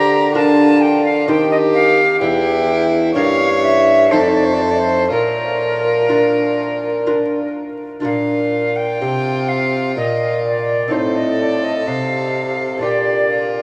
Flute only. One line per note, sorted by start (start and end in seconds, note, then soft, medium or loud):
0.00 0.34 A#5 loud
0.35 0.83 A5 loud
0.81 1.05 G5 loud
1.05 1.28 F5 loud
1.28 1.51 G5 loud
1.51 1.57 D#5 loud
1.74 2.20 F5 loud
2.20 2.86 G5 loud
3.15 3.60 F5 loud
3.63 4.13 E5 loud
4.11 4.21 C5 medium
4.20 4.30 D5 medium
4.28 4.38 C5 medium
4.36 4.46 D5 medium
4.45 4.55 C5 medium
4.54 4.63 D5 medium
4.61 4.72 C5 medium
4.71 4.80 D5 medium
4.79 5.10 C5 loud
5.11 7.51 A#4 loud
8.04 8.78 F5 loud
8.76 9.50 G5 loud
9.49 9.96 F5 loud
9.97 10.43 D#5 medium
10.45 10.93 D5 medium
10.92 11.17 C5 medium
11.16 11.41 D#5 medium
11.40 11.66 D5 medium
11.64 11.89 D#5 medium
11.87 12.84 F5 loud
12.83 13.51 D5 medium